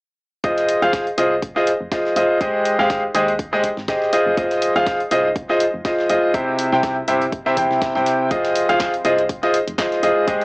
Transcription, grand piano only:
0.44 0.79 F3 medium
0.44 0.79 F4 medium
0.44 0.79 G#4 medium
0.44 0.79 C5 medium
0.44 0.79 D#5 medium
0.82 1.04 F3 medium
0.82 1.04 F4 medium
0.82 1.04 G#4 medium
0.82 1.04 C5 medium
0.82 1.04 F5 loud
1.18 1.33 F3 medium
1.18 1.33 F4 medium
1.18 1.33 G#4 medium
1.18 1.33 C5 medium
1.18 1.33 D#5 medium
1.56 1.69 F3 medium
1.56 1.69 F4 medium
1.56 1.69 G#4 medium
1.56 1.69 C5 medium
1.56 1.69 D#5 loud
1.92 2.14 F3 medium
1.92 2.14 F4 medium
1.92 2.14 G#4 medium
1.92 2.14 C5 medium
1.92 2.14 D#5 medium
2.16 2.37 F4 medium
2.16 2.37 G#4 medium
2.16 2.37 C5 medium
2.16 2.37 D#5 medium
2.41 2.76 G#3 medium
2.41 2.76 G4 medium
2.41 2.76 G#4 medium
2.41 2.76 C5 medium
2.41 2.76 D#5 medium
2.79 3.01 G#3 medium
2.79 3.01 G4 medium
2.79 3.01 G#4 medium
2.79 3.01 C5 medium
2.79 3.01 F5 loud
3.14 3.30 G#3 medium
3.14 3.30 G4 medium
3.14 3.30 G#4 medium
3.14 3.30 C5 medium
3.14 3.30 D#5 medium
3.53 3.66 G#3 medium
3.53 3.66 G4 medium
3.53 3.66 G#4 medium
3.53 3.66 C5 medium
3.53 3.66 D#5 loud
3.88 4.10 G4 medium
3.88 4.10 G#4 medium
3.88 4.10 C5 medium
3.88 4.10 D#5 medium
4.13 4.34 F3 medium
4.13 4.34 F4 medium
4.13 4.34 G#4 medium
4.13 4.34 C5 medium
4.13 4.34 D#5 medium
4.37 4.72 F3 medium
4.37 4.72 F4 medium
4.37 4.72 G#4 medium
4.37 4.72 C5 medium
4.37 4.72 D#5 medium
4.76 4.98 F3 medium
4.76 4.98 F4 medium
4.76 4.98 G#4 medium
4.76 4.98 C5 medium
4.76 4.98 F5 loud
5.11 5.26 F3 medium
5.11 5.26 F4 medium
5.11 5.26 G#4 medium
5.11 5.26 C5 medium
5.11 5.26 D#5 medium
5.49 5.62 F3 medium
5.49 5.62 F4 medium
5.49 5.62 G#4 medium
5.49 5.62 C5 medium
5.49 5.62 D#5 loud
5.85 6.07 F3 medium
5.85 6.07 F4 medium
5.85 6.07 G#4 medium
5.85 6.07 C5 medium
5.85 6.07 D#5 medium
6.10 6.31 F4 medium
6.10 6.31 G#4 medium
6.10 6.31 C5 medium
6.10 6.31 D#5 medium
6.34 6.69 C3 medium
6.34 6.69 E4 medium
6.34 6.69 G4 medium
6.34 6.69 C5 medium
6.34 6.69 E5 medium
6.72 6.95 C3 medium
6.72 6.95 E4 medium
6.72 6.95 G4 medium
6.72 6.95 C5 medium
6.72 6.95 G5 loud
7.08 7.23 C3 medium
7.08 7.23 E4 medium
7.08 7.23 G4 medium
7.08 7.23 C5 medium
7.08 7.23 E5 medium
7.46 7.55 C3 medium
7.46 7.55 E4 medium
7.46 7.55 G4 medium
7.46 7.55 C5 medium
7.46 7.55 E5 loud
7.57 7.92 C3 medium
7.57 7.92 E4 medium
7.57 7.92 G4 medium
7.57 7.92 C5 medium
7.57 7.92 G5 medium
7.95 8.28 C3 medium
7.95 8.28 E4 medium
7.95 8.28 G4 medium
7.95 8.28 C5 medium
7.95 8.28 G5 medium
8.31 8.66 F3 medium
8.31 8.66 F4 medium
8.31 8.66 G#4 medium
8.31 8.66 C5 medium
8.31 8.66 D#5 medium
8.69 8.91 F3 medium
8.69 8.91 F4 medium
8.69 8.91 G#4 medium
8.69 8.91 C5 medium
8.69 8.91 F5 loud
9.05 9.20 F3 medium
9.05 9.20 F4 medium
9.05 9.20 G#4 medium
9.05 9.20 C5 medium
9.05 9.20 D#5 medium
9.43 9.56 F3 medium
9.43 9.56 F4 medium
9.43 9.56 G#4 medium
9.43 9.56 C5 medium
9.43 9.56 D#5 loud
9.78 10.00 F3 medium
9.78 10.00 F4 medium
9.78 10.00 G#4 medium
9.78 10.00 C5 medium
9.78 10.00 D#5 medium
10.03 10.24 F4 medium
10.03 10.24 G#4 medium
10.03 10.24 C5 medium
10.03 10.24 D#5 medium
10.28 10.45 G#3 medium
10.28 10.45 G4 medium
10.28 10.45 G#4 medium
10.28 10.45 C5 medium
10.28 10.45 D#5 medium

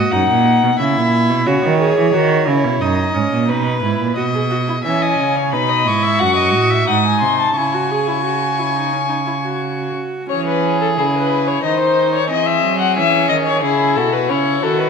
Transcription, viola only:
0.00 0.14 F#4 medium
0.12 0.79 D#4 medium
0.79 1.48 E4 medium
1.47 1.80 F#4 medium
1.80 2.15 G#4 medium
2.14 2.46 F#4 medium
2.47 2.83 E4 medium
2.82 3.16 D#4 medium
3.15 3.48 C#4 medium
3.48 3.82 D#4 medium
3.82 4.16 E4 medium
4.17 4.23 F#4 medium
4.34 4.41 G#4 medium
4.50 4.57 F#4 medium
4.68 4.75 E4 medium
4.85 5.54 C#4 medium
5.53 5.86 D#4 medium
5.87 6.22 E4 medium
6.20 6.87 F#4 medium
6.88 7.55 D#4 medium
7.56 7.75 E4 medium
7.74 7.92 F#4 medium
7.91 8.09 G#4 medium
8.08 8.24 E4 medium
8.24 8.60 F#4 medium
8.59 8.77 E4 medium
8.76 8.94 D#4 medium
8.93 9.09 C#4 medium
9.09 9.16 D#4 medium
9.26 9.33 E4 medium
9.44 10.27 F#4 medium
10.29 10.93 C#4 medium
10.97 11.63 E4 medium
11.64 12.30 D#4 medium
12.31 12.99 C4 medium
12.97 13.63 C#4 medium
13.64 14.31 E4 medium
14.30 14.62 C#4 medium
14.63 14.90 F#4 medium

